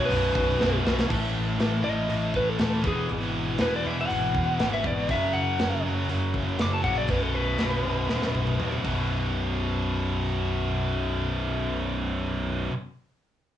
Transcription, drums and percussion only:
0.10 open hi-hat
0.35 kick
0.61 snare
0.87 snare
0.99 snare
1.10 kick, crash
1.60 snare, open hi-hat
2.10 open hi-hat
2.34 kick
2.59 snare, open hi-hat
2.84 kick
3.09 open hi-hat
3.58 snare, open hi-hat
4.10 open hi-hat
4.34 kick
4.59 snare, open hi-hat
4.84 kick
5.09 kick, open hi-hat
5.59 snare, open hi-hat
6.09 open hi-hat
6.34 kick
6.59 snare, open hi-hat
6.84 kick
7.08 kick, open hi-hat
7.58 snare, open hi-hat
8.09 snare
8.22 snare
8.35 high tom
8.47 high tom
8.60 mid tom
8.72 mid tom
8.85 kick, crash

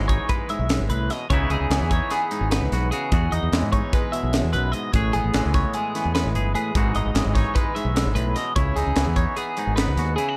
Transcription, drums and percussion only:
0.09 kick, closed hi-hat
0.29 kick, closed hi-hat
0.49 closed hi-hat
0.69 snare, closed hi-hat
0.90 closed hi-hat
1.10 snare, closed hi-hat
1.30 kick, closed hi-hat
1.50 closed hi-hat
1.71 snare, closed hi-hat
1.91 kick, closed hi-hat
2.10 snare, closed hi-hat
2.31 closed hi-hat
2.51 snare, closed hi-hat
2.72 snare, closed hi-hat
2.92 closed hi-hat
3.12 kick, closed hi-hat
3.32 closed hi-hat
3.53 snare, closed hi-hat
3.73 kick, closed hi-hat
3.93 kick, closed hi-hat
4.13 closed hi-hat
4.33 snare, closed hi-hat
4.53 closed hi-hat
4.73 closed hi-hat
4.93 kick, closed hi-hat
5.13 closed hi-hat
5.34 snare, closed hi-hat
5.54 kick, snare, closed hi-hat
5.74 closed hi-hat
5.95 snare, closed hi-hat
6.15 snare, closed hi-hat
6.35 closed hi-hat
6.55 closed hi-hat
6.75 kick, closed hi-hat
6.95 closed hi-hat
7.15 snare, closed hi-hat
7.35 kick, snare, closed hi-hat
7.55 kick, closed hi-hat
7.76 closed hi-hat
7.96 snare, closed hi-hat
8.16 closed hi-hat
8.36 snare, closed hi-hat
8.56 kick, closed hi-hat
8.76 snare, closed hi-hat
8.96 snare, closed hi-hat
9.16 kick, closed hi-hat
9.37 closed hi-hat
9.57 closed hi-hat
9.77 snare, closed hi-hat
9.97 snare, closed hi-hat
10.18 closed hi-hat

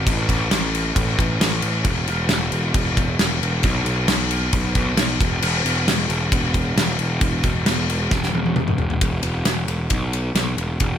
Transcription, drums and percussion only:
0.07 kick, crash
0.29 kick, crash
0.51 snare, crash
0.75 crash
0.96 kick, crash
1.19 kick, crash
1.41 snare, crash
1.62 crash
1.84 kick, crash
2.07 crash
2.29 snare, crash
2.52 crash
2.74 kick, crash
2.97 kick, crash
3.19 snare, crash
3.43 crash
3.63 kick, crash
3.86 crash
4.08 snare, crash
4.31 crash
4.53 kick, crash
4.75 kick, crash
4.97 snare, crash
5.21 kick, crash
5.42 crash
5.66 crash
5.88 snare, crash
6.10 crash
6.32 kick, crash
6.54 kick, crash
6.77 snare, crash
6.99 crash
7.21 kick, crash
7.43 kick, crash
7.66 snare, crash
7.90 crash
8.11 kick, snare
8.23 snare
8.35 high tom
8.46 high tom
8.56 mid tom
8.68 mid tom
8.78 floor tom
8.90 floor tom
9.01 kick, ride
9.23 ride
9.45 snare, ride
9.68 ride
9.90 kick, ride
10.13 ride
10.35 snare, ride
10.58 ride
10.80 kick, ride

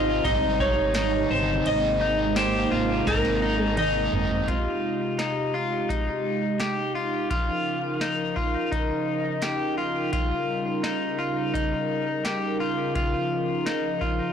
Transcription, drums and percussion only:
0.25 kick, ride
0.60 kick
0.94 snare, ride, tambourine
1.66 ride
2.36 snare, ride, tambourine
3.07 kick, snare, ride
3.25 snare
3.60 high tom
3.77 mid tom, ride
4.13 floor tom
4.31 floor tom
4.48 kick, closed hi-hat
5.19 snare, closed hi-hat
5.90 kick, closed hi-hat
6.60 snare, closed hi-hat
7.31 kick, closed hi-hat
8.01 snare, closed hi-hat
8.37 kick
8.72 kick, closed hi-hat
9.42 snare, closed hi-hat
10.13 kick, closed hi-hat
10.84 snare, closed hi-hat
11.55 kick, closed hi-hat
12.25 snare, closed hi-hat
12.95 kick, closed hi-hat
13.67 snare, closed hi-hat
14.02 kick

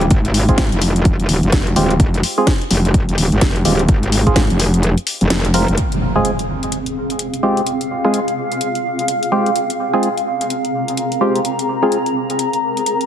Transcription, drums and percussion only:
0.01 closed hi-hat
0.11 kick, closed hi-hat
0.25 closed hi-hat
0.34 open hi-hat
0.49 kick, closed hi-hat
0.58 kick, snare, closed hi-hat
0.72 closed hi-hat
0.82 open hi-hat
0.96 closed hi-hat
1.05 kick, closed hi-hat
1.20 closed hi-hat
1.29 open hi-hat
1.43 closed hi-hat
1.52 kick, snare, closed hi-hat
1.67 closed hi-hat
1.76 open hi-hat
1.91 closed hi-hat
2.00 kick, closed hi-hat
2.14 closed hi-hat
2.23 open hi-hat
2.47 kick, snare, closed hi-hat
2.62 closed hi-hat
2.71 open hi-hat
2.85 closed hi-hat
2.94 kick, closed hi-hat
3.09 closed hi-hat
3.18 open hi-hat
3.32 closed hi-hat
3.41 kick, snare, closed hi-hat
3.56 closed hi-hat
3.65 open hi-hat
3.79 closed hi-hat
3.88 kick, closed hi-hat
4.03 closed hi-hat
4.12 open hi-hat
4.27 kick, closed hi-hat
4.36 kick, snare, closed hi-hat
4.50 closed hi-hat
4.60 open hi-hat
4.74 closed hi-hat
4.83 closed hi-hat
4.98 closed hi-hat
5.07 open hi-hat
5.21 closed hi-hat
5.30 snare, closed hi-hat
5.45 closed hi-hat
5.54 open hi-hat
5.68 closed hi-hat
5.78 closed hi-hat
5.92 closed hi-hat
6.25 closed hi-hat
6.39 closed hi-hat
6.63 closed hi-hat
6.72 closed hi-hat
6.86 closed hi-hat
7.10 closed hi-hat
7.19 closed hi-hat
7.34 closed hi-hat
7.57 closed hi-hat
7.67 closed hi-hat
7.81 closed hi-hat
8.14 closed hi-hat
8.28 closed hi-hat
8.52 closed hi-hat
8.61 closed hi-hat
8.75 closed hi-hat
8.99 closed hi-hat
9.08 closed hi-hat
9.23 closed hi-hat
9.46 closed hi-hat
9.56 closed hi-hat
9.70 closed hi-hat
10.03 closed hi-hat
10.18 closed hi-hat
10.41 closed hi-hat
10.50 closed hi-hat
10.65 closed hi-hat
10.88 closed hi-hat
10.97 closed hi-hat
11.12 closed hi-hat
11.36 closed hi-hat
11.45 closed hi-hat
11.59 closed hi-hat
11.92 closed hi-hat
12.06 closed hi-hat
12.30 closed hi-hat
12.39 closed hi-hat
12.53 closed hi-hat
12.77 closed hi-hat
12.86 closed hi-hat
13.01 closed hi-hat

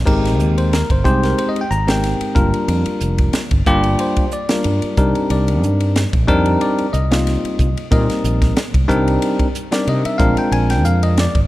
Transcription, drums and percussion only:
0.07 kick, crash
0.25 snare, ride
0.40 hi-hat pedal
0.58 ride
0.73 snare, ride
0.90 kick, ride
1.05 kick, hi-hat pedal
1.23 snare, ride
1.38 ride
1.56 ride
1.71 hi-hat pedal
1.88 snare, ride
2.04 snare, ride
2.21 ride
2.36 kick, hi-hat pedal
2.54 ride
2.68 ride
2.86 ride
3.01 hi-hat pedal
3.18 kick, ride
3.33 snare, ride
3.51 kick, ride
3.66 kick, hi-hat pedal
3.84 ride
3.99 ride
4.16 kick, ride
4.31 hi-hat pedal
4.49 snare, ride
4.64 ride
4.82 ride
4.97 kick, hi-hat pedal
5.15 ride
5.30 ride
5.48 ride
5.63 hi-hat pedal
5.80 ride
5.96 snare, ride
6.13 kick, ride
6.28 kick, hi-hat pedal
6.46 ride
6.61 ride
6.78 ride
6.94 hi-hat pedal
7.12 snare, ride
7.27 snare, ride
7.45 ride
7.59 kick, hi-hat pedal
7.77 ride
7.92 kick, ride
8.10 snare, ride
8.24 hi-hat pedal
8.42 kick, snare, ride
8.57 snare, ride
8.74 kick, ride
8.89 kick, hi-hat pedal
9.08 ride
9.22 ride
9.39 kick, ride
9.55 hi-hat pedal
9.72 snare, ride
9.87 ride
10.05 ride
10.20 kick, hi-hat pedal
10.37 ride
10.52 ride
10.70 snare, ride
10.85 hi-hat pedal
11.03 ride
11.18 snare, ride
11.35 kick, ride

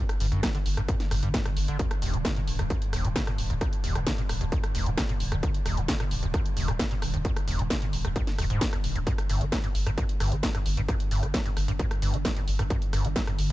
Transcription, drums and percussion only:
0.09 cross-stick, closed hi-hat
0.20 open hi-hat
0.32 closed hi-hat
0.43 kick, cross-stick, snare, closed hi-hat
0.55 closed hi-hat
0.66 open hi-hat
0.77 cross-stick, closed hi-hat
0.89 kick, closed hi-hat
1.00 snare, closed hi-hat
1.11 cross-stick, open hi-hat
1.23 closed hi-hat
1.34 kick, snare, closed hi-hat
1.45 cross-stick, closed hi-hat
1.57 open hi-hat
1.68 closed hi-hat
1.79 kick, closed hi-hat
1.91 cross-stick, closed hi-hat
2.02 open hi-hat
2.14 closed hi-hat
2.25 kick, cross-stick, snare, closed hi-hat
2.36 closed hi-hat
2.48 open hi-hat
2.59 cross-stick, closed hi-hat
2.70 kick, closed hi-hat
2.82 closed hi-hat
2.93 cross-stick, open hi-hat
3.05 closed hi-hat
3.16 kick, snare, closed hi-hat
3.27 cross-stick, closed hi-hat
3.38 open hi-hat
3.50 closed hi-hat
3.61 kick, cross-stick, closed hi-hat
3.73 closed hi-hat
3.84 open hi-hat
3.95 cross-stick, closed hi-hat
4.07 kick, snare, closed hi-hat
4.18 closed hi-hat
4.29 cross-stick, open hi-hat
4.41 closed hi-hat
4.52 kick, closed hi-hat
4.64 cross-stick, closed hi-hat
4.75 open hi-hat
4.86 closed hi-hat
4.97 kick, cross-stick, snare, closed hi-hat
5.09 closed hi-hat
5.20 open hi-hat
5.32 cross-stick, closed hi-hat
5.43 kick, closed hi-hat
5.54 closed hi-hat
5.66 cross-stick, open hi-hat
5.77 closed hi-hat
5.88 kick, snare, closed hi-hat
6.00 cross-stick, closed hi-hat
6.11 open hi-hat
6.23 closed hi-hat
6.34 kick, cross-stick, closed hi-hat
6.46 closed hi-hat
6.57 open hi-hat
6.68 cross-stick, closed hi-hat
6.79 kick, snare, closed hi-hat
6.91 closed hi-hat
7.02 cross-stick, open hi-hat
7.14 closed hi-hat
7.25 kick, closed hi-hat
7.36 cross-stick, closed hi-hat
7.48 open hi-hat
7.59 closed hi-hat
7.70 kick, cross-stick, snare, closed hi-hat
7.82 closed hi-hat
7.93 open hi-hat
8.05 cross-stick, closed hi-hat
8.16 kick, closed hi-hat
8.27 snare, closed hi-hat
8.38 cross-stick, open hi-hat
8.50 closed hi-hat
8.61 kick, snare, closed hi-hat
8.73 cross-stick, closed hi-hat
8.84 open hi-hat
8.96 closed hi-hat
9.07 kick, closed hi-hat
9.18 cross-stick, closed hi-hat
9.29 open hi-hat
9.41 closed hi-hat
9.52 kick, cross-stick, snare, closed hi-hat
9.64 closed hi-hat
9.75 open hi-hat
9.86 cross-stick, closed hi-hat
9.98 kick, closed hi-hat
10.09 closed hi-hat
10.20 cross-stick, open hi-hat
10.32 closed hi-hat
10.43 kick, snare, closed hi-hat
10.55 cross-stick, closed hi-hat
10.66 open hi-hat
10.77 closed hi-hat
10.89 kick, cross-stick, closed hi-hat
11.00 closed hi-hat
11.11 open hi-hat
11.23 cross-stick, closed hi-hat
11.34 kick, snare, closed hi-hat
11.46 closed hi-hat
11.57 cross-stick, open hi-hat
11.68 closed hi-hat
11.79 kick, closed hi-hat
11.91 cross-stick, closed hi-hat
12.02 open hi-hat
12.14 closed hi-hat
12.25 kick, cross-stick, snare, closed hi-hat
12.36 closed hi-hat
12.48 open hi-hat
12.59 cross-stick, closed hi-hat
12.70 kick, closed hi-hat
12.82 closed hi-hat
12.93 cross-stick, open hi-hat
13.05 closed hi-hat
13.16 kick, snare, closed hi-hat
13.27 cross-stick, closed hi-hat
13.39 open hi-hat

